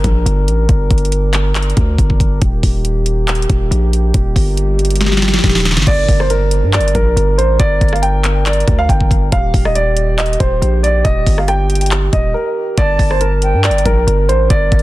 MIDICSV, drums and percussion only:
0, 0, Header, 1, 2, 480
1, 0, Start_track
1, 0, Key_signature, -2, "minor"
1, 0, Tempo, 431655
1, 767, Time_signature, 4, 2, 24, 8
1, 16485, End_track
2, 0, Start_track
2, 0, Title_t, "Drums"
2, 47, Note_on_c, 9, 36, 96
2, 47, Note_on_c, 9, 42, 74
2, 158, Note_off_c, 9, 42, 0
2, 159, Note_off_c, 9, 36, 0
2, 293, Note_on_c, 9, 42, 78
2, 404, Note_off_c, 9, 42, 0
2, 534, Note_on_c, 9, 42, 73
2, 645, Note_off_c, 9, 42, 0
2, 766, Note_on_c, 9, 42, 90
2, 767, Note_on_c, 9, 36, 127
2, 877, Note_off_c, 9, 42, 0
2, 878, Note_off_c, 9, 36, 0
2, 1007, Note_on_c, 9, 36, 98
2, 1007, Note_on_c, 9, 42, 56
2, 1087, Note_off_c, 9, 42, 0
2, 1087, Note_on_c, 9, 42, 58
2, 1118, Note_off_c, 9, 36, 0
2, 1167, Note_off_c, 9, 42, 0
2, 1167, Note_on_c, 9, 42, 57
2, 1246, Note_off_c, 9, 42, 0
2, 1246, Note_on_c, 9, 42, 83
2, 1358, Note_off_c, 9, 42, 0
2, 1482, Note_on_c, 9, 42, 81
2, 1487, Note_on_c, 9, 39, 72
2, 1593, Note_off_c, 9, 42, 0
2, 1598, Note_off_c, 9, 39, 0
2, 1727, Note_on_c, 9, 39, 105
2, 1727, Note_on_c, 9, 42, 72
2, 1807, Note_off_c, 9, 42, 0
2, 1807, Note_on_c, 9, 42, 58
2, 1839, Note_off_c, 9, 39, 0
2, 1887, Note_off_c, 9, 42, 0
2, 1887, Note_on_c, 9, 42, 44
2, 1967, Note_off_c, 9, 42, 0
2, 1967, Note_on_c, 9, 36, 95
2, 1967, Note_on_c, 9, 42, 77
2, 2078, Note_off_c, 9, 36, 0
2, 2078, Note_off_c, 9, 42, 0
2, 2207, Note_on_c, 9, 36, 92
2, 2213, Note_on_c, 9, 42, 76
2, 2318, Note_off_c, 9, 36, 0
2, 2324, Note_off_c, 9, 42, 0
2, 2334, Note_on_c, 9, 36, 86
2, 2445, Note_off_c, 9, 36, 0
2, 2447, Note_on_c, 9, 36, 100
2, 2454, Note_on_c, 9, 42, 75
2, 2558, Note_off_c, 9, 36, 0
2, 2565, Note_off_c, 9, 42, 0
2, 2686, Note_on_c, 9, 42, 90
2, 2687, Note_on_c, 9, 36, 122
2, 2797, Note_off_c, 9, 42, 0
2, 2798, Note_off_c, 9, 36, 0
2, 2927, Note_on_c, 9, 36, 100
2, 2931, Note_on_c, 9, 46, 71
2, 3038, Note_off_c, 9, 36, 0
2, 3042, Note_off_c, 9, 46, 0
2, 3166, Note_on_c, 9, 42, 81
2, 3278, Note_off_c, 9, 42, 0
2, 3402, Note_on_c, 9, 42, 84
2, 3513, Note_off_c, 9, 42, 0
2, 3647, Note_on_c, 9, 42, 59
2, 3648, Note_on_c, 9, 39, 105
2, 3727, Note_off_c, 9, 42, 0
2, 3727, Note_on_c, 9, 42, 58
2, 3759, Note_off_c, 9, 39, 0
2, 3807, Note_off_c, 9, 42, 0
2, 3807, Note_on_c, 9, 42, 63
2, 3887, Note_off_c, 9, 42, 0
2, 3887, Note_on_c, 9, 36, 94
2, 3887, Note_on_c, 9, 42, 76
2, 3998, Note_off_c, 9, 36, 0
2, 3998, Note_off_c, 9, 42, 0
2, 4133, Note_on_c, 9, 42, 78
2, 4244, Note_off_c, 9, 42, 0
2, 4374, Note_on_c, 9, 42, 71
2, 4485, Note_off_c, 9, 42, 0
2, 4606, Note_on_c, 9, 42, 87
2, 4607, Note_on_c, 9, 36, 121
2, 4717, Note_off_c, 9, 42, 0
2, 4718, Note_off_c, 9, 36, 0
2, 4847, Note_on_c, 9, 36, 98
2, 4851, Note_on_c, 9, 46, 72
2, 4958, Note_off_c, 9, 36, 0
2, 4962, Note_off_c, 9, 46, 0
2, 5086, Note_on_c, 9, 42, 80
2, 5198, Note_off_c, 9, 42, 0
2, 5327, Note_on_c, 9, 42, 50
2, 5390, Note_off_c, 9, 42, 0
2, 5390, Note_on_c, 9, 42, 61
2, 5454, Note_off_c, 9, 42, 0
2, 5454, Note_on_c, 9, 42, 71
2, 5510, Note_off_c, 9, 42, 0
2, 5510, Note_on_c, 9, 42, 82
2, 5567, Note_on_c, 9, 38, 59
2, 5569, Note_off_c, 9, 42, 0
2, 5569, Note_on_c, 9, 42, 72
2, 5630, Note_off_c, 9, 38, 0
2, 5630, Note_on_c, 9, 38, 52
2, 5680, Note_off_c, 9, 42, 0
2, 5694, Note_off_c, 9, 38, 0
2, 5694, Note_on_c, 9, 38, 63
2, 5750, Note_off_c, 9, 38, 0
2, 5750, Note_on_c, 9, 38, 57
2, 5807, Note_off_c, 9, 38, 0
2, 5807, Note_on_c, 9, 38, 74
2, 5807, Note_on_c, 9, 42, 72
2, 5870, Note_off_c, 9, 38, 0
2, 5870, Note_on_c, 9, 38, 69
2, 5918, Note_off_c, 9, 42, 0
2, 5934, Note_off_c, 9, 38, 0
2, 5934, Note_on_c, 9, 38, 84
2, 5990, Note_off_c, 9, 38, 0
2, 5990, Note_on_c, 9, 38, 71
2, 6047, Note_off_c, 9, 38, 0
2, 6047, Note_on_c, 9, 36, 92
2, 6047, Note_on_c, 9, 38, 83
2, 6047, Note_on_c, 9, 42, 63
2, 6110, Note_off_c, 9, 38, 0
2, 6110, Note_on_c, 9, 38, 75
2, 6127, Note_off_c, 9, 42, 0
2, 6127, Note_on_c, 9, 42, 65
2, 6158, Note_off_c, 9, 36, 0
2, 6174, Note_off_c, 9, 38, 0
2, 6174, Note_on_c, 9, 38, 94
2, 6207, Note_off_c, 9, 42, 0
2, 6207, Note_on_c, 9, 42, 67
2, 6230, Note_off_c, 9, 38, 0
2, 6230, Note_on_c, 9, 38, 80
2, 6287, Note_off_c, 9, 38, 0
2, 6287, Note_on_c, 9, 38, 104
2, 6293, Note_off_c, 9, 42, 0
2, 6293, Note_on_c, 9, 42, 75
2, 6350, Note_off_c, 9, 38, 0
2, 6350, Note_on_c, 9, 38, 90
2, 6405, Note_off_c, 9, 42, 0
2, 6414, Note_off_c, 9, 38, 0
2, 6414, Note_on_c, 9, 38, 105
2, 6470, Note_off_c, 9, 38, 0
2, 6470, Note_on_c, 9, 38, 92
2, 6526, Note_on_c, 9, 42, 90
2, 6527, Note_on_c, 9, 36, 127
2, 6527, Note_on_c, 9, 49, 108
2, 6582, Note_off_c, 9, 38, 0
2, 6637, Note_off_c, 9, 42, 0
2, 6638, Note_off_c, 9, 36, 0
2, 6638, Note_off_c, 9, 49, 0
2, 6767, Note_on_c, 9, 36, 105
2, 6771, Note_on_c, 9, 46, 72
2, 6878, Note_off_c, 9, 36, 0
2, 6882, Note_off_c, 9, 46, 0
2, 6894, Note_on_c, 9, 37, 89
2, 7005, Note_off_c, 9, 37, 0
2, 7006, Note_on_c, 9, 42, 86
2, 7118, Note_off_c, 9, 42, 0
2, 7242, Note_on_c, 9, 42, 88
2, 7353, Note_off_c, 9, 42, 0
2, 7487, Note_on_c, 9, 42, 61
2, 7488, Note_on_c, 9, 39, 110
2, 7567, Note_off_c, 9, 42, 0
2, 7567, Note_on_c, 9, 42, 61
2, 7599, Note_off_c, 9, 39, 0
2, 7647, Note_off_c, 9, 42, 0
2, 7647, Note_on_c, 9, 42, 61
2, 7727, Note_off_c, 9, 42, 0
2, 7727, Note_on_c, 9, 36, 100
2, 7727, Note_on_c, 9, 42, 78
2, 7838, Note_off_c, 9, 42, 0
2, 7839, Note_off_c, 9, 36, 0
2, 7973, Note_on_c, 9, 42, 79
2, 8085, Note_off_c, 9, 42, 0
2, 8214, Note_on_c, 9, 42, 72
2, 8325, Note_off_c, 9, 42, 0
2, 8446, Note_on_c, 9, 42, 92
2, 8447, Note_on_c, 9, 36, 126
2, 8557, Note_off_c, 9, 42, 0
2, 8558, Note_off_c, 9, 36, 0
2, 8687, Note_on_c, 9, 36, 102
2, 8687, Note_on_c, 9, 42, 59
2, 8767, Note_off_c, 9, 42, 0
2, 8767, Note_on_c, 9, 42, 56
2, 8798, Note_off_c, 9, 36, 0
2, 8814, Note_on_c, 9, 37, 93
2, 8847, Note_off_c, 9, 42, 0
2, 8847, Note_on_c, 9, 42, 57
2, 8925, Note_off_c, 9, 37, 0
2, 8927, Note_off_c, 9, 42, 0
2, 8927, Note_on_c, 9, 42, 84
2, 9038, Note_off_c, 9, 42, 0
2, 9162, Note_on_c, 9, 42, 81
2, 9167, Note_on_c, 9, 39, 74
2, 9273, Note_off_c, 9, 42, 0
2, 9278, Note_off_c, 9, 39, 0
2, 9407, Note_on_c, 9, 42, 75
2, 9408, Note_on_c, 9, 39, 105
2, 9487, Note_off_c, 9, 42, 0
2, 9487, Note_on_c, 9, 42, 58
2, 9519, Note_off_c, 9, 39, 0
2, 9567, Note_off_c, 9, 42, 0
2, 9567, Note_on_c, 9, 42, 47
2, 9647, Note_off_c, 9, 42, 0
2, 9647, Note_on_c, 9, 36, 98
2, 9647, Note_on_c, 9, 42, 79
2, 9758, Note_off_c, 9, 42, 0
2, 9759, Note_off_c, 9, 36, 0
2, 9887, Note_on_c, 9, 36, 93
2, 9893, Note_on_c, 9, 42, 76
2, 9998, Note_off_c, 9, 36, 0
2, 10004, Note_off_c, 9, 42, 0
2, 10014, Note_on_c, 9, 36, 87
2, 10125, Note_off_c, 9, 36, 0
2, 10128, Note_on_c, 9, 36, 101
2, 10134, Note_on_c, 9, 42, 79
2, 10239, Note_off_c, 9, 36, 0
2, 10245, Note_off_c, 9, 42, 0
2, 10366, Note_on_c, 9, 42, 89
2, 10367, Note_on_c, 9, 36, 124
2, 10478, Note_off_c, 9, 36, 0
2, 10478, Note_off_c, 9, 42, 0
2, 10607, Note_on_c, 9, 36, 102
2, 10611, Note_on_c, 9, 46, 75
2, 10718, Note_off_c, 9, 36, 0
2, 10722, Note_off_c, 9, 46, 0
2, 10734, Note_on_c, 9, 37, 92
2, 10845, Note_off_c, 9, 37, 0
2, 10847, Note_on_c, 9, 42, 83
2, 10958, Note_off_c, 9, 42, 0
2, 11082, Note_on_c, 9, 42, 88
2, 11193, Note_off_c, 9, 42, 0
2, 11327, Note_on_c, 9, 42, 60
2, 11328, Note_on_c, 9, 39, 108
2, 11407, Note_off_c, 9, 42, 0
2, 11407, Note_on_c, 9, 42, 60
2, 11439, Note_off_c, 9, 39, 0
2, 11487, Note_off_c, 9, 42, 0
2, 11487, Note_on_c, 9, 42, 64
2, 11567, Note_off_c, 9, 42, 0
2, 11567, Note_on_c, 9, 36, 98
2, 11567, Note_on_c, 9, 42, 79
2, 11678, Note_off_c, 9, 36, 0
2, 11678, Note_off_c, 9, 42, 0
2, 11813, Note_on_c, 9, 42, 80
2, 11924, Note_off_c, 9, 42, 0
2, 12054, Note_on_c, 9, 42, 73
2, 12165, Note_off_c, 9, 42, 0
2, 12286, Note_on_c, 9, 42, 92
2, 12287, Note_on_c, 9, 36, 123
2, 12397, Note_off_c, 9, 42, 0
2, 12398, Note_off_c, 9, 36, 0
2, 12527, Note_on_c, 9, 36, 103
2, 12531, Note_on_c, 9, 46, 76
2, 12638, Note_off_c, 9, 36, 0
2, 12642, Note_off_c, 9, 46, 0
2, 12654, Note_on_c, 9, 37, 91
2, 12765, Note_off_c, 9, 37, 0
2, 12766, Note_on_c, 9, 42, 82
2, 12767, Note_on_c, 9, 37, 65
2, 12878, Note_off_c, 9, 37, 0
2, 12878, Note_off_c, 9, 42, 0
2, 13007, Note_on_c, 9, 42, 51
2, 13070, Note_off_c, 9, 42, 0
2, 13070, Note_on_c, 9, 42, 61
2, 13134, Note_off_c, 9, 42, 0
2, 13134, Note_on_c, 9, 42, 72
2, 13190, Note_off_c, 9, 42, 0
2, 13190, Note_on_c, 9, 42, 79
2, 13247, Note_on_c, 9, 39, 107
2, 13248, Note_off_c, 9, 42, 0
2, 13248, Note_on_c, 9, 42, 74
2, 13358, Note_off_c, 9, 39, 0
2, 13359, Note_off_c, 9, 42, 0
2, 13487, Note_on_c, 9, 36, 98
2, 13487, Note_on_c, 9, 42, 80
2, 13598, Note_off_c, 9, 36, 0
2, 13598, Note_off_c, 9, 42, 0
2, 14206, Note_on_c, 9, 42, 93
2, 14207, Note_on_c, 9, 36, 123
2, 14317, Note_off_c, 9, 42, 0
2, 14318, Note_off_c, 9, 36, 0
2, 14447, Note_on_c, 9, 36, 98
2, 14450, Note_on_c, 9, 46, 72
2, 14558, Note_off_c, 9, 36, 0
2, 14562, Note_off_c, 9, 46, 0
2, 14574, Note_on_c, 9, 37, 95
2, 14685, Note_off_c, 9, 37, 0
2, 14687, Note_on_c, 9, 42, 85
2, 14798, Note_off_c, 9, 42, 0
2, 14922, Note_on_c, 9, 42, 85
2, 15033, Note_off_c, 9, 42, 0
2, 15167, Note_on_c, 9, 42, 60
2, 15168, Note_on_c, 9, 39, 110
2, 15247, Note_off_c, 9, 42, 0
2, 15247, Note_on_c, 9, 42, 60
2, 15279, Note_off_c, 9, 39, 0
2, 15327, Note_off_c, 9, 42, 0
2, 15327, Note_on_c, 9, 42, 63
2, 15407, Note_off_c, 9, 42, 0
2, 15407, Note_on_c, 9, 36, 96
2, 15407, Note_on_c, 9, 42, 79
2, 15518, Note_off_c, 9, 42, 0
2, 15519, Note_off_c, 9, 36, 0
2, 15653, Note_on_c, 9, 42, 80
2, 15764, Note_off_c, 9, 42, 0
2, 15893, Note_on_c, 9, 42, 73
2, 16005, Note_off_c, 9, 42, 0
2, 16126, Note_on_c, 9, 42, 90
2, 16127, Note_on_c, 9, 36, 127
2, 16237, Note_off_c, 9, 42, 0
2, 16238, Note_off_c, 9, 36, 0
2, 16367, Note_on_c, 9, 36, 101
2, 16367, Note_on_c, 9, 42, 57
2, 16447, Note_off_c, 9, 42, 0
2, 16447, Note_on_c, 9, 42, 56
2, 16478, Note_off_c, 9, 36, 0
2, 16485, Note_off_c, 9, 42, 0
2, 16485, End_track
0, 0, End_of_file